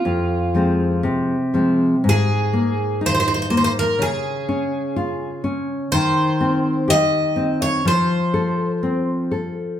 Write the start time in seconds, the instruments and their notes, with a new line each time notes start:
Already playing: twelve-string acoustic guitar F4
0.05 nylon-string guitar F2
0.55 nylon-string guitar F3 G#3 C4
1.03 nylon-string guitar C3
1.54 nylon-string guitar F3 G#3 C4
2.04 nylon-string guitar G#2
2.09 twelve-string acoustic guitar G#4
2.53 nylon-string guitar A#3
3.01 nylon-string guitar D#4
3.06 twelve-string acoustic guitar C5
3.15 twelve-string acoustic guitar C5
3.20 twelve-string acoustic guitar C5
3.28 twelve-string acoustic guitar C5
3.34 twelve-string acoustic guitar C5
3.42 twelve-string acoustic guitar C5
3.50 nylon-string guitar A#3, twelve-string acoustic guitar C5
3.57 twelve-string acoustic guitar C5
3.64 twelve-string acoustic guitar C5
3.79 twelve-string acoustic guitar A#4
3.99 nylon-string guitar C#3, twelve-string acoustic guitar G#4
4.49 nylon-string guitar C#4
4.96 nylon-string guitar F4
5.44 nylon-string guitar C#4
5.92 nylon-string guitar D#3, twelve-string acoustic guitar C5
6.41 nylon-string guitar C4
6.88 nylon-string guitar G4, twelve-string acoustic guitar D#5
7.36 nylon-string guitar C4
7.62 twelve-string acoustic guitar C#5
7.85 nylon-string guitar F3, twelve-string acoustic guitar C5
8.34 nylon-string guitar A4
8.83 nylon-string guitar C4
9.31 nylon-string guitar A4